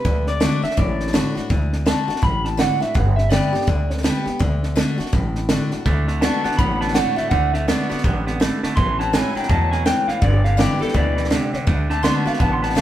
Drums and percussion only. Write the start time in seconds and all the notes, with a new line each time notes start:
0.05 kick, snare
0.27 snare
0.41 snare, hi-hat pedal
0.64 snare
0.71 snare
0.77 kick, snare
1.00 snare
1.07 snare
1.14 snare, hi-hat pedal
1.36 snare
1.50 kick, snare
1.73 snare
1.87 snare, hi-hat pedal
2.09 snare
2.16 snare
2.23 kick, snare
2.45 snare
2.59 snare, hi-hat pedal
2.81 snare
2.95 kick, snare
3.18 snare
3.32 snare, hi-hat pedal
3.54 snare
3.61 snare
3.67 kick, snare
3.90 snare
3.97 snare
4.04 snare, hi-hat pedal
4.26 snare
4.40 kick, snare
4.63 snare
4.77 snare, hi-hat pedal
4.99 snare
5.06 snare
5.13 kick, snare
5.35 snare
5.49 snare, hi-hat pedal
5.71 snare
5.86 kick, snare
6.08 snare
6.22 snare, hi-hat pedal
6.44 snare
6.51 snare
6.59 kick, snare
6.81 snare
6.88 snare
6.95 snare, hi-hat pedal
7.17 snare
7.31 kick, snare
7.54 snare
7.68 snare, hi-hat pedal
7.91 snare
7.98 snare
8.04 kick, snare
8.27 snare
8.41 snare, hi-hat pedal
8.63 snare
8.77 kick, snare
9.00 snare
9.14 snare, hi-hat pedal
9.36 snare
9.43 snare
9.50 kick, snare
9.72 snare
9.86 snare, hi-hat pedal
10.08 snare
10.22 kick, snare
10.45 snare
10.59 snare, hi-hat pedal
10.81 snare
10.88 snare
10.95 kick, snare
11.17 snare
11.24 snare
11.31 snare, hi-hat pedal
11.53 snare
11.67 kick, snare
11.90 snare
12.04 snare, hi-hat pedal
12.26 snare
12.33 snare
12.40 kick, snare
12.63 snare
12.70 snare
12.77 snare, hi-hat pedal